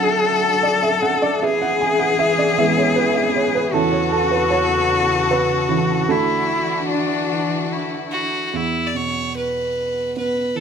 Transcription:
Already playing: upright piano D3 F#3 A3 F#4 E5 F#5 G#5, string section F#3 D4 A4, cello A4
0.63 upright piano D5
0.82 upright piano E5
1.02 upright piano F#5
1.22 upright piano D5
1.42 string section E3 B3 G#4, upright piano G#4 E5, cello G#4
1.62 upright piano F#5
1.81 upright piano G#5
1.99 upright piano F#5
2.19 upright piano E5
2.39 upright piano D5
2.58 upright piano E3 G#3 B3 E5
2.78 upright piano C#5
2.96 upright piano B4
3.15 upright piano E5
3.36 upright piano C#5
3.55 upright piano B4
3.73 string section E2 C#3 A4, upright piano E3 C#4 E4 A4, cello F#4
3.92 upright piano C#5
4.12 upright piano A4
4.31 upright piano B4
4.50 upright piano C#5
5.31 upright piano B4
5.68 upright piano E3 C#4 E4
6.08 upright piano D3 A3 F#4 A4, string section E3 D4 F#4, cello E4
6.87 cello D4
7.72 cello E4
8.12 fiddle F#4
8.47 fiddle F#4
8.53 upright piano E2, fiddle E4
8.87 fiddle D5
8.94 upright piano B2, fiddle C#5
9.37 fiddle B4
10.16 upright piano B3, fiddle B4
10.55 upright piano E3, fiddle A4

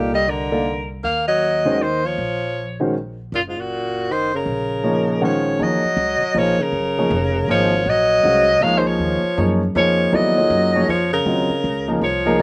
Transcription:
Already playing: upright bass C2, tenor saxophone A#2, grand piano A#3 D#4 A4 D5 F5, soprano saxophone G4
0.13 tenor saxophone G3, soprano saxophone D#5
0.28 tenor saxophone D3, soprano saxophone A#4
0.52 grand piano A#3 D#4 A4 D5 F5
1.03 upright bass D#2, tenor saxophone A#3, soprano saxophone F5
1.28 tenor saxophone F#3, soprano saxophone D#5
1.65 grand piano D#3 G#3 C#4 F#4 C5
1.80 tenor saxophone D#3, soprano saxophone C5
2.04 tenor saxophone F3, soprano saxophone C#5
2.18 upright bass A#1
2.80 grand piano D#3 G#3 C#4 F#4 C5
3.32 upright bass F#1, tenor saxophone A#2, soprano saxophone F4
3.48 tenor saxophone G#2, soprano saxophone F4
3.58 tenor saxophone A#2, soprano saxophone F#4
4.10 tenor saxophone D#3, soprano saxophone C5
4.34 tenor saxophone C#3, soprano saxophone A#4
4.46 upright bass A#1
4.84 grand piano F3 A#3 D#4 G#4 C#5
5.21 grand piano D#3 G#3 C#4 C#5 F#5, tenor saxophone F3, soprano saxophone C#5
5.59 upright bass D#2, grand piano F3 A#3 D#4 G#4 C#5, tenor saxophone F#3, soprano saxophone D#5
5.84 muted upright bass stroke
5.97 upright bass C#2
6.21 muted upright bass stroke
6.35 upright bass A#1, grand piano F3 A#3 D#4 G#4 C#5, tenor saxophone F3, soprano saxophone C#5
6.59 tenor saxophone C#3, soprano saxophone A#4, muted upright bass stroke
6.72 upright bass F#1
6.98 grand piano F3 A#3 D#4 G#4 C#5
7.10 upright bass F1
7.48 upright bass G#1, grand piano F3 A#3 D#4 G#4 C5, tenor saxophone F3, soprano saxophone C#5
7.86 upright bass A#1, tenor saxophone F#3, soprano saxophone D#5
8.23 upright bass C2, grand piano G#3 C#4 F#4 C5 F5
8.61 upright bass C#2, grand piano F3 A#3 D#4 G#4 C#5, tenor saxophone G#3, soprano saxophone F5
8.78 tenor saxophone D#3, soprano saxophone C5
8.87 tenor saxophone F3, soprano saxophone C#5
8.99 upright bass D#2
9.23 muted upright bass stroke
9.37 upright bass F#2, grand piano F3 A#3 D#4 G#4 C#5
9.75 upright bass F2, grand piano F3 A#3 D#4 G#4 C#5, tenor saxophone F3, soprano saxophone C#5
10.13 upright bass D#2, grand piano F#3 B3 E4 A4 D5, tenor saxophone F#3, soprano saxophone D#5
10.37 grand piano A#3 D#4 F4 G#4 C#5
10.50 upright bass F#2
10.75 grand piano F3 A#3 D#4 G#4 C#5
10.88 upright bass F2, tenor saxophone F3, soprano saxophone C#5
11.12 tenor saxophone C#3, soprano saxophone A#4
11.26 upright bass D#2, grand piano F#3 C4 F4 A#4 D#5
11.50 muted upright bass stroke
11.64 upright bass C#2
11.88 grand piano F3 A#3 D#4 G#4 A#4
12.01 upright bass C2, tenor saxophone F3, soprano saxophone C#5
12.26 grand piano F3 A#3 D#4 G#4 A#4
12.38 tenor saxophone F#3, grand piano A#3

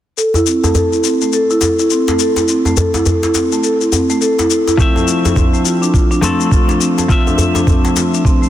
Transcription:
0.17 marimba A4, shaker
0.34 marimba E4, djembe tone, shaker
0.47 marimba C4, shaker
0.64 marimba A3, djembe tone, shaker
0.75 marimba A4, djembe bass, shaker
0.92 marimba E4, shaker
1.04 marimba C4, shaker
1.21 marimba A3, shaker
1.33 marimba A4, shaker
1.50 marimba E4, shaker
1.61 marimba A4, djembe slap, djembe tone, shaker
1.79 marimba E4, shaker
1.90 marimba C4, shaker
2.08 marimba A3, djembe slap, shaker
2.19 marimba A4, shaker
2.36 marimba E4, djembe slap, shaker
2.48 marimba C4, shaker
2.65 marimba A3, djembe tone, shaker
2.77 marimba A4, djembe bass, shaker
2.94 marimba E4, djembe slap, djembe tone, shaker
3.06 marimba A4, djembe bass, shaker
3.23 marimba E4, djembe slap, shaker
3.35 marimba C4, djembe slap, shaker
3.52 marimba A3, shaker
3.64 marimba A4, shaker
3.81 marimba E4, shaker
3.92 marimba C4, djembe tone, shaker
4.10 marimba A3, shaker
4.21 marimba A4, shaker
4.39 marimba E4, djembe slap, shaker
4.50 marimba A4, shaker
4.67 marimba E4, djembe slap, shaker
4.77 clean electric guitar F3 A3 C4, marimba C4, kick, shaker
4.82 clean electric guitar E5
4.96 marimba A3, djembe tone, shaker
5.07 marimba F4, shaker
5.25 marimba D4, djembe tone, shaker
5.36 marimba C4, kick, djembe bass, shaker
5.53 marimba A3, shaker
5.65 marimba F4, shaker
5.82 marimba D4, shaker
5.93 marimba F4, kick, shaker
6.11 marimba D4, shaker
6.21 clean electric guitar F3 A3 C4 A4, marimba C4, djembe slap, djembe tone, shaker
6.40 marimba A3, shaker
6.51 marimba F4, kick, shaker
6.69 marimba D4, djembe slap, shaker
6.80 marimba C4, shaker
6.98 marimba A3, djembe slap, shaker
7.08 clean electric guitar F3 A3 C4 E5, marimba F4, kick, shaker
7.27 marimba D4, djembe tone, shaker
7.38 marimba F4, djembe bass, shaker
7.55 marimba D4, djembe slap, djembe tone, shaker
7.67 marimba C4, kick, djembe bass, shaker
7.84 marimba A3, djembe slap, shaker
7.96 marimba F4, djembe slap, shaker
8.14 marimba D4, shaker
8.25 marimba C4, kick, shaker
8.42 marimba A3, shaker

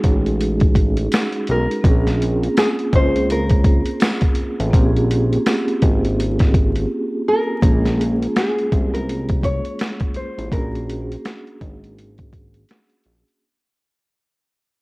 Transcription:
Already playing: vibraphone G#3 C#4 D#4 F#4 G#4
0.03 analog synth bass A1, kick, closed hi-hat
0.26 closed hi-hat
0.41 closed hi-hat
0.60 kick, closed hi-hat
0.75 kick, closed hi-hat
0.97 closed hi-hat
1.12 snare, closed hi-hat, tambourine
1.32 closed hi-hat
1.47 analog synth bass B1, closed hi-hat
1.51 nylon-string guitar A#4
1.71 closed hi-hat
1.81 analog synth bass A#1, vibraphone A#3 C4 C#4, kick, closed hi-hat
1.87 vibraphone F4 G#4
2.07 snare, closed hi-hat
2.22 closed hi-hat
2.44 closed hi-hat
2.57 nylon-string guitar G#4, snare, closed hi-hat, tambourine
2.79 closed hi-hat
2.93 analog synth bass C#2, nylon-string guitar C5, kick, closed hi-hat
3.16 closed hi-hat
3.30 nylon-string guitar A#4, closed hi-hat
3.50 kick, closed hi-hat
3.64 kick, closed hi-hat
3.86 closed hi-hat
4.00 snare, closed hi-hat, tambourine
4.21 kick, closed hi-hat
4.35 closed hi-hat
4.60 analog synth bass A1, closed hi-hat
4.71 analog synth bass A#1, vibraphone A#3 C4, kick, closed hi-hat
4.75 vibraphone C#4 F4
4.79 vibraphone G4
4.85 vibraphone G#4
4.96 closed hi-hat
5.11 closed hi-hat
5.33 closed hi-hat
5.46 snare, closed hi-hat, tambourine
5.68 closed hi-hat
5.82 analog synth bass G#1, kick, closed hi-hat
6.05 closed hi-hat
6.20 closed hi-hat
6.39 kick, snare, closed hi-hat
6.54 kick, closed hi-hat
6.75 closed hi-hat
7.28 nylon-string guitar A#4
7.60 analog synth bass A#1, vibraphone G#3 A#3, kick, closed hi-hat
7.65 vibraphone C#4 F4 G#4
7.86 snare, closed hi-hat
8.01 closed hi-hat
8.05 nylon-string guitar G#4
8.22 closed hi-hat
8.36 nylon-string guitar G#4, snare, closed hi-hat
8.58 closed hi-hat
8.72 analog synth bass C2, kick, closed hi-hat
8.94 nylon-string guitar A#4, closed hi-hat
9.09 closed hi-hat
9.29 kick, closed hi-hat
9.43 nylon-string guitar C#5, kick, closed hi-hat
9.65 closed hi-hat
9.79 snare, closed hi-hat
10.00 kick, closed hi-hat
10.14 nylon-string guitar C5, closed hi-hat
10.38 analog synth bass A1, closed hi-hat
10.50 analog synth bass A#1, vibraphone A#3 C#4, nylon-string guitar A#4, kick, closed hi-hat
10.54 vibraphone D4 F#4 G#4
10.75 closed hi-hat
10.90 closed hi-hat
11.12 closed hi-hat
11.25 snare, closed hi-hat
11.47 closed hi-hat
11.61 analog synth bass G#1, kick, closed hi-hat
11.84 closed hi-hat
11.98 closed hi-hat
12.18 kick, closed hi-hat
12.33 kick, closed hi-hat
12.54 closed hi-hat
12.69 snare, closed hi-hat
12.90 closed hi-hat
13.04 analog synth bass A#1, closed hi-hat
13.28 closed hi-hat

